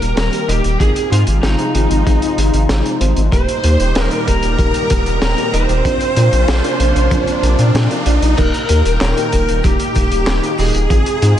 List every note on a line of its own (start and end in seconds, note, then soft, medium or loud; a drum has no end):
0.00 0.14 D#1 medium
0.00 0.78 D#3 medium
0.00 0.78 G3 medium
0.00 0.29 A#3 medium
0.00 0.78 A#3 medium
0.00 0.29 D#4 medium
0.00 0.29 G4 medium
0.00 0.78 G4 medium
0.00 0.16 A#4 loud
0.00 0.29 A#4 medium
0.00 0.78 A#4 medium
0.00 closed hi-hat medium
0.00 riser medium
0.17 0.29 D#1 loud
0.17 0.49 A#4 loud
0.17 0.49 A#4 medium
0.17 snare loud
0.17 closed hi-hat medium
0.33 0.46 A#3 medium
0.33 0.46 D#4 medium
0.33 0.46 G4 medium
0.33 0.46 A#4 medium
0.33 closed hi-hat medium
0.48 0.61 D#1 medium
0.48 0.67 A#3 medium
0.48 0.67 D#4 medium
0.48 0.79 G4 medium
0.48 0.81 G4 loud
0.48 0.67 G4 medium
0.48 0.67 D#5 loud
0.48 closed hi-hat loud
0.64 0.77 D#1 medium
0.64 closed hi-hat medium
0.80 0.93 G#1 loud
0.80 3.30 C3 medium
0.80 3.30 F3 medium
0.80 3.30 G#3 medium
0.80 1.08 C4 medium
0.80 3.30 D#4 medium
0.80 1.08 D#4 medium
0.80 3.30 F4 medium
0.80 1.08 F4 medium
0.80 1.12 G#4 loud
0.80 1.11 G#4 loud
0.80 1.08 G#4 loud
0.80 kick loud
0.80 closed hi-hat medium
0.96 closed hi-hat medium
1.11 1.24 G#2 loud
1.11 1.30 C4 medium
1.11 1.30 D#4 medium
1.11 1.25 F4 medium
1.11 1.20 F4 medium
1.11 1.30 F4 medium
1.11 1.30 G#4 loud
1.11 closed hi-hat loud
1.27 1.40 G#1 medium
1.27 closed hi-hat medium
1.43 1.56 G#1 medium
1.43 2.97 D#4 loud
1.43 2.97 D#4 medium
1.43 snare loud
1.43 closed hi-hat medium
1.59 1.71 C4 medium
1.59 1.71 D#4 medium
1.59 1.71 F4 medium
1.59 1.71 G#4 medium
1.59 closed hi-hat medium
1.75 1.87 G#1 medium
1.75 2.02 C4 medium
1.75 2.02 D#4 medium
1.75 2.02 F4 medium
1.75 2.02 G#4 loud
1.75 closed hi-hat loud
1.91 2.03 G#1 medium
1.91 closed hi-hat medium
2.06 2.19 G#1 loud
2.06 2.34 C4 medium
2.06 2.34 D#4 medium
2.06 2.34 F4 medium
2.06 2.34 G#4 loud
2.06 kick loud
2.06 closed hi-hat medium
2.22 closed hi-hat medium
2.38 2.50 G#1 medium
2.38 2.81 C4 medium
2.38 2.81 D#4 medium
2.38 2.81 F4 medium
2.38 2.81 G#4 medium
2.38 closed hi-hat loud
2.54 2.66 G#1 medium
2.54 closed hi-hat medium
2.69 2.82 G#1 loud
2.69 snare loud
2.69 closed hi-hat medium
2.85 2.99 C4 medium
2.85 2.99 D#4 medium
2.85 2.99 F4 medium
2.85 2.99 G#4 medium
2.85 closed hi-hat medium
3.01 3.13 G#1 medium
3.01 3.20 C4 medium
3.01 3.20 D#4 medium
3.01 3.20 F4 medium
3.01 3.20 C5 loud
3.01 closed hi-hat loud
3.17 3.29 G#1 medium
3.17 closed hi-hat medium
3.32 3.45 D#1 loud
3.32 5.83 A#2 medium
3.32 5.83 D#3 medium
3.32 5.83 G3 medium
3.32 3.60 A#3 medium
3.32 3.60 D#4 medium
3.32 5.83 D#4 medium
3.32 3.60 G4 medium
3.32 5.83 G4 medium
3.32 3.60 A#4 loud
3.32 4.01 C5 loud
3.32 4.02 C5 loud
3.32 kick loud
3.32 closed hi-hat medium
3.48 closed hi-hat medium
3.64 3.77 D#2 medium
3.64 3.83 A#3 medium
3.64 3.83 D#4 medium
3.64 3.83 G4 medium
3.64 3.83 A#4 loud
3.64 closed hi-hat loud
3.80 3.93 D#1 medium
3.80 closed hi-hat medium
3.95 4.08 D#1 medium
3.95 snare loud
3.95 closed hi-hat medium
4.01 4.27 A#4 loud
4.11 4.23 A#3 medium
4.11 4.23 D#4 medium
4.11 4.23 G4 medium
4.11 4.24 A#4 medium
4.11 closed hi-hat medium
4.27 4.40 D#1 medium
4.27 4.54 A#3 medium
4.27 4.54 D#4 medium
4.27 4.54 G4 medium
4.27 5.21 A#4 loud
4.27 4.54 A#4 loud
4.27 5.21 A#4 loud
4.27 kick medium
4.27 closed hi-hat loud
4.43 4.56 D#1 medium
4.43 closed hi-hat medium
4.59 4.71 D#1 loud
4.59 4.87 A#3 medium
4.59 4.87 D#4 medium
4.59 4.87 G4 medium
4.59 4.87 A#4 loud
4.59 kick loud
4.59 closed hi-hat medium
4.74 closed hi-hat medium
4.90 5.03 D#1 medium
4.90 5.34 A#3 medium
4.90 5.34 D#4 medium
4.90 5.34 G4 medium
4.90 5.34 A#4 medium
4.90 kick loud
4.90 closed hi-hat loud
5.06 5.19 D#1 medium
5.06 closed hi-hat medium
5.22 5.35 D#1 loud
5.22 5.55 A#4 loud
5.22 5.53 A#4 medium
5.22 snare loud
5.22 closed hi-hat medium
5.38 5.51 A#3 medium
5.38 5.51 D#4 medium
5.38 5.51 G4 medium
5.38 5.51 A#4 medium
5.38 closed hi-hat medium
5.53 5.66 D#1 medium
5.53 5.72 A#3 medium
5.53 5.72 D#4 medium
5.53 5.72 G4 medium
5.53 7.71 C5 loud
5.53 5.72 D#5 loud
5.53 closed hi-hat medium
5.69 5.82 D#1 medium
5.69 closed hi-hat medium
5.85 5.98 A#1 loud
5.85 8.35 C3 medium
5.85 8.35 F3 medium
5.85 8.35 A#3 medium
5.85 6.13 C4 medium
5.85 8.35 D4 medium
5.85 6.13 D4 medium
5.85 8.35 F4 medium
5.85 6.13 F4 medium
5.85 6.13 A#4 loud
5.85 kick loud
5.85 closed hi-hat medium
6.00 closed hi-hat medium
6.16 6.29 A#2 medium
6.16 6.35 C4 medium
6.16 6.35 D4 medium
6.16 6.35 F4 medium
6.16 6.35 A#4 loud
6.16 closed hi-hat loud
6.33 6.45 A#1 medium
6.33 closed hi-hat medium
6.48 6.61 A#1 loud
6.48 snare loud
6.48 closed hi-hat medium
6.64 6.76 C4 medium
6.64 6.76 D4 medium
6.64 6.76 F4 medium
6.64 6.76 A#4 medium
6.64 closed hi-hat medium
6.80 6.92 A#1 medium
6.80 7.07 C4 medium
6.80 7.07 D4 medium
6.80 7.07 F4 medium
6.80 7.07 A#4 loud
6.80 closed hi-hat medium
6.96 7.08 A#1 medium
6.96 closed hi-hat medium
7.11 7.24 A#1 loud
7.11 7.39 C4 loud
7.11 7.39 D4 medium
7.11 7.39 F4 medium
7.11 7.39 A#4 loud
7.11 kick loud
7.11 closed hi-hat medium
7.27 closed hi-hat medium
7.43 7.56 A#1 medium
7.43 7.87 C4 medium
7.43 7.87 D4 medium
7.43 7.87 F4 medium
7.43 7.87 A#4 medium
7.43 closed hi-hat loud
7.59 7.71 A#2 medium
7.59 closed hi-hat medium
7.74 7.87 A#2 loud
7.74 snare loud
7.74 closed hi-hat medium
7.91 8.04 C4 medium
7.91 8.04 D4 medium
7.91 8.04 F4 medium
7.91 8.04 A#4 medium
7.91 closed hi-hat medium
8.06 8.19 A#1 loud
8.06 8.25 C4 medium
8.06 8.25 D4 medium
8.06 8.25 F4 medium
8.06 8.25 D5 loud
8.06 closed hi-hat medium
8.22 8.35 A#1 medium
8.22 closed hi-hat medium
8.37 8.51 D#1 loud
8.37 10.88 A#2 medium
8.37 10.88 D#3 medium
8.37 10.88 A#3 medium
8.37 8.66 A#3 loud
8.37 11.40 D#4 medium
8.37 8.66 D#4 medium
8.37 8.66 G4 medium
8.37 8.66 A#4 loud
8.37 8.97 A#4 loud
8.37 10.88 G5 medium
8.37 kick loud
8.37 closed hi-hat medium
8.37 crash loud
8.37 shaker medium
8.53 closed hi-hat medium
8.53 shaker soft
8.69 8.82 D#2 loud
8.69 8.88 A#3 medium
8.69 8.88 D#4 medium
8.69 8.88 G4 medium
8.69 8.88 A#4 loud
8.69 closed hi-hat loud
8.69 shaker medium
8.85 8.98 D#1 medium
8.85 closed hi-hat medium
8.85 shaker soft
9.01 9.14 D#1 loud
9.01 9.60 A#4 medium
9.01 9.60 A#4 loud
9.01 snare loud
9.01 clap medium
9.01 closed hi-hat medium
9.01 shaker medium
9.17 9.29 A#3 medium
9.17 9.29 D#4 medium
9.17 9.29 G4 medium
9.17 9.29 A#4 medium
9.17 closed hi-hat medium
9.17 shaker soft
9.32 9.45 D#1 loud
9.32 9.60 A#3 medium
9.32 9.60 D#4 medium
9.32 9.60 G4 medium
9.32 9.60 A#4 loud
9.32 kick medium
9.32 closed hi-hat loud
9.32 shaker medium
9.48 9.61 D#1 medium
9.48 closed hi-hat medium
9.48 shaker soft
9.63 9.77 D#1 loud
9.63 9.92 A#3 loud
9.63 9.92 D#4 medium
9.63 10.55 G4 medium
9.63 9.92 G4 medium
9.63 10.55 G4 loud
9.63 9.92 A#4 loud
9.63 kick loud
9.63 closed hi-hat medium
9.63 shaker medium
9.79 closed hi-hat medium
9.79 shaker soft
9.95 10.08 D#1 medium
9.95 10.39 A#3 medium
9.95 10.39 D#4 medium
9.95 10.39 G4 medium
9.95 10.39 A#4 medium
9.95 kick loud
9.95 closed hi-hat loud
9.95 shaker medium
10.12 10.24 D#1 medium
10.12 closed hi-hat medium
10.12 shaker soft
10.27 10.40 D#1 loud
10.27 snare loud
10.27 clap medium
10.27 closed hi-hat medium
10.27 shaker medium
10.43 10.57 A#3 medium
10.43 10.57 D#4 medium
10.43 10.57 G4 medium
10.43 10.57 A#4 medium
10.43 closed hi-hat medium
10.43 shaker soft
10.58 10.71 D#1 medium
10.58 10.78 A#3 medium
10.58 10.78 D#4 medium
10.58 10.78 G4 medium
10.58 11.40 G#4 loud
10.58 10.78 D#5 loud
10.58 open hi-hat medium
10.58 shaker medium
10.75 10.87 D#1 medium
10.75 closed hi-hat medium
10.75 shaker medium
10.90 11.03 G#1 loud
10.90 11.40 C3 medium
10.90 11.40 F3 medium
10.90 11.40 G#3 medium
10.90 11.18 C4 loud
10.90 11.18 D#4 medium
10.90 11.18 F4 medium
10.90 11.40 F4 medium
10.90 11.18 G#4 loud
10.90 kick loud
10.90 closed hi-hat medium
10.90 shaker medium
11.06 closed hi-hat medium
11.06 shaker soft
11.22 11.35 G#2 loud
11.22 11.40 C4 medium
11.22 11.40 D#4 medium
11.22 11.40 F4 medium
11.22 11.40 G#4 loud
11.22 closed hi-hat loud
11.22 shaker medium